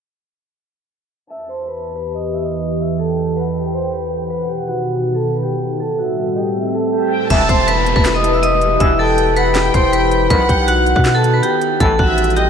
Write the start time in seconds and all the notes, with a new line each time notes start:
1.30 E2 E3 G4 B4 E5 A5 E6
1.49 C5 C6
1.68 B4 B5
1.96 B4 B5
2.15 D#5 D#6
2.33 E5 E6
2.43 D#5 D#6
2.80 E5 E6
2.99 A4 G5 A5
3.36 B4 F#5 B5
3.55 G5
3.74 C5 C6
3.93 B4 B5
4.30 B2 D#3 D#4 B4 F#5 B5
4.49 G4 G5
4.68 F#4 F#5
4.96 F#4 F#5
5.15 A4 A5
5.33 B4 B5
5.43 G4 G5
5.80 A2 G3 C4 A4 A5
5.99 F#4 E5 F#5
6.36 G4 D#5 G5
6.55 E5
6.74 A4 A5
6.93 G4 G5
7.12 G5
7.30 E1 G2 B2 E3 E4 G4 B4 E5 A5 E6, kick, closed hi-hat, crash, downlifter
7.49 E1 C5 C6, kick, closed hi-hat
7.68 B4 B5, closed hi-hat
7.86 closed hi-hat
7.96 E1 B4 B5, kick
8.05 snare, clap, closed hi-hat
8.15 D#5 D#6
8.24 closed hi-hat
8.33 E5 E6
8.43 D#5 D#6, closed hi-hat
8.61 closed hi-hat
8.80 E1 G2 B2 E3 E5 E6, kick, closed hi-hat
8.99 A4 G5 A5
9.18 closed hi-hat
9.36 B4 F#5 B5, closed hi-hat
9.55 G5, snare, clap, closed hi-hat
9.74 E1 C5 C6, kick, closed hi-hat
9.93 B4 B5, closed hi-hat
10.11 closed hi-hat
10.30 B1 F#2 B2 D#3 B3 D#4 B4 F#5 B5, kick, closed hi-hat
10.49 B1 G4 G5, kick, closed hi-hat
10.68 F#4 F#5, closed hi-hat
10.86 closed hi-hat
10.96 B2 F#4 F#5, kick
11.05 snare, clap, closed hi-hat
11.15 A4 A5
11.24 closed hi-hat
11.33 B4 B5
11.43 G4 G5, closed hi-hat
11.61 closed hi-hat
11.80 A1 A2 C3 E3 G3 A3 E4 A4 C5 A5, kick, closed hi-hat
11.99 A1 F#4 E5 F#5, kick
12.18 closed hi-hat
12.24 closed hi-hat
12.30 closed hi-hat
12.36 G4 D#5 G5, closed hi-hat